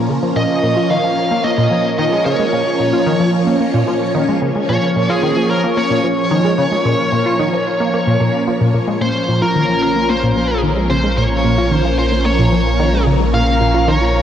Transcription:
0.00 8.97 F3 medium
0.00 8.97 A#3 medium
0.00 8.97 C#4 medium
0.00 0.33 A#4 medium
0.09 0.18 C#3 medium
0.23 0.32 F3 medium
0.36 0.45 A#2 medium
0.36 8.97 C#5 medium
0.36 0.92 D#5 loud
0.63 0.76 A#2 medium
0.77 0.86 F4 medium
0.90 0.99 D#3 medium
0.90 1.46 F5 loud
1.04 1.09 F3 medium
1.31 1.40 A#3 medium
1.44 1.50 A#3 medium
1.44 1.97 D#5 medium
1.58 1.67 A#2 loud
1.71 1.80 F3 medium
1.98 2.07 D#3 loud
1.98 2.25 D#5 medium
2.12 2.21 G#3 medium
2.25 2.34 C#3 medium
2.25 3.30 C#5 medium
2.39 2.45 G#3 medium
2.53 2.62 A#2 medium
2.80 2.93 A#2 medium
2.93 3.02 F4 medium
3.07 3.16 D#3 loud
3.20 3.26 F3 medium
3.47 3.56 A#3 medium
3.61 3.66 A#3 medium
3.74 3.83 A#2 loud
3.88 3.97 F3 medium
4.15 4.24 D#3 loud
4.28 4.37 G#3 medium
4.42 4.51 C#3 medium
4.56 4.61 G#3 medium
4.69 4.78 A#2 medium
4.69 5.11 C#5 loud
4.96 5.09 A#2 medium
5.10 5.18 F4 medium
5.10 5.50 G#4 medium
5.23 5.32 D#3 loud
5.37 5.42 F3 medium
5.50 5.78 A#4 medium
5.64 5.73 A#3 medium
5.77 5.82 A#3 medium
5.77 8.43 C#5 medium
5.90 5.99 A#2 loud
6.04 6.13 F3 medium
6.31 6.40 D#3 loud
6.44 6.53 G#3 medium
6.58 6.67 C#3 loud
6.72 6.77 G#3 medium
6.85 6.94 A#2 medium
7.12 7.25 A#2 medium
7.26 7.35 F4 medium
7.39 7.48 D#3 loud
7.53 7.58 F3 medium
7.80 7.89 A#3 medium
7.94 7.99 A#3 medium
8.07 8.16 A#2 loud
8.20 8.29 A#2 medium
8.47 8.53 F3 medium
8.61 8.73 A#2 medium
8.74 8.80 A#2 medium
8.88 8.97 G#3 medium
9.01 14.22 A#1 medium
9.01 9.10 A#2 medium
9.01 14.22 F3 medium
9.01 14.22 A#3 medium
9.01 14.22 C#4 medium
9.01 14.22 A#4 medium
9.01 9.39 C5 loud
9.29 9.41 A#2 medium
9.42 9.51 F4 medium
9.42 9.81 A#4 loud
9.56 9.64 D#3 loud
9.69 9.74 F3 medium
9.82 10.10 A#4 medium
9.96 10.05 A#3 medium
10.09 10.15 A#3 medium
10.09 10.60 C5 medium
10.23 10.32 A#2 loud
10.37 10.45 F3 medium
10.63 10.72 D#3 loud
10.77 10.86 G#3 medium
10.90 10.99 C#3 medium
10.90 11.17 C5 medium
11.04 11.09 G#3 medium
11.18 11.26 A#2 medium
11.18 11.75 C#5 loud
11.44 11.57 A#2 medium
11.58 11.67 F4 medium
11.71 11.80 D#3 loud
11.71 11.98 C5 loud
11.85 11.90 F3 medium
11.99 12.25 C5 medium
12.12 12.21 A#3 medium
12.26 12.31 A#3 medium
12.26 13.03 C#5 medium
12.39 12.48 A#2 loud
12.52 12.61 F3 medium
12.80 12.89 D#3 loud
12.93 13.02 G#3 medium
13.07 13.16 C#3 loud
13.20 13.25 G#3 medium
13.34 13.43 A#2 medium
13.34 13.90 F5 loud
13.61 13.74 A#2 medium
13.74 13.83 F4 medium
13.88 13.97 D#3 loud
13.88 14.22 C#5 loud
14.01 14.07 F3 medium

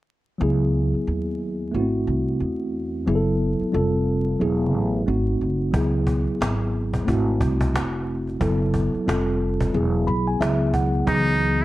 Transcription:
0.38 0.91 C#2 loud
0.38 1.70 F#3 medium
0.38 1.71 B3 medium
0.38 1.72 E4 medium
0.43 1.73 G#4 medium
0.94 muted upright bass stroke soft
1.07 1.71 D#2 medium
1.72 2.06 G#1 medium
1.72 3.03 A3 medium
1.72 1.81 B3 medium
1.72 3.05 E4 medium
1.76 3.08 C4 medium
1.76 3.06 F#4 medium
2.07 2.39 C2 medium
2.40 3.04 E2 medium
3.06 3.58 F#1 medium
3.06 3.73 F#3 medium
3.06 3.74 B3 medium
3.06 3.74 E4 medium
3.06 3.16 G#4 medium
3.15 3.73 A4 medium
3.61 muted upright bass stroke soft
3.72 4.38 F1 medium
3.72 4.40 G3 medium
3.72 4.40 C4 medium
3.72 4.41 F4 medium
3.72 4.41 A4 medium
4.39 4.74 E1 medium
4.39 5.07 F#3 medium
4.39 5.07 B3 medium
4.39 5.07 E4 medium
4.39 5.08 G#4 medium
4.74 5.06 A1 medium
5.06 5.39 G#1 medium
5.06 5.73 A3 medium
5.06 5.74 C4 medium
5.06 5.74 D#4 medium
5.06 5.75 F#4 medium
5.41 5.73 F#1 medium
5.71 6.25 C#2 medium
5.71 7.03 F#3 medium
5.71 7.04 B3 medium
5.71 7.05 E4 medium
5.71 cajon bass medium
5.76 7.06 G#4 medium
6.07 cajon bass medium
6.27 muted upright bass stroke soft
6.27 cajon slap soft
6.41 7.04 G#1 medium
6.41 cajon slap loud
6.94 cajon bass medium
6.94 cajon slap soft
7.05 7.39 G#1 medium
7.05 8.37 A3 medium
7.05 8.38 C4 medium
7.05 8.38 E4 medium
7.05 cajon bass medium
7.10 8.39 F#4 medium
7.41 7.72 C2 medium
7.41 cajon bass medium
7.61 cajon bass medium
7.74 8.37 F1 medium
7.74 cajon slap loud
8.27 cajon slap soft
8.29 cajon slap soft
8.40 8.91 F#1 medium
8.40 9.07 F#3 medium
8.40 9.07 B3 medium
8.40 9.08 E4 medium
8.40 9.07 A4 medium
8.40 cajon bass loud
8.62 cajon slap soft
8.74 cajon bass medium
8.94 muted upright bass stroke soft
8.94 cajon slap soft
9.06 9.71 F1 medium
9.06 9.73 G3 medium
9.06 9.74 C4 medium
9.06 9.74 F4 medium
9.06 9.75 A4 medium
9.06 cajon slap loud
9.60 cajon bass medium
9.60 cajon slap soft
9.72 10.06 E1 medium
9.72 10.38 F#3 medium
9.72 10.39 B3 medium
9.72 10.40 E4 medium
9.72 10.41 G#4 medium
9.72 cajon slap soft
10.07 10.39 B1 medium
10.07 10.26 B5 medium
10.27 10.40 G#5 medium
10.27 cajon slap soft
10.39 11.04 C#2 medium
10.39 11.05 F#3 medium
10.39 11.06 B3 medium
10.39 11.08 E4 medium
10.39 11.08 G#4 medium
10.39 10.72 E5 medium
10.39 cajon slap loud
10.74 11.05 F#5 medium
10.74 cajon bass medium
10.93 cajon slap soft
10.95 cajon slap soft
11.06 11.65 C#2 medium
11.06 11.65 F#3 medium
11.06 11.65 B3 medium
11.06 11.15 D#4 soft
11.06 11.63 D#4 loud
11.06 11.65 G#4 medium
11.06 cajon bass loud
11.14 11.65 E3 medium
11.61 cajon slap soft

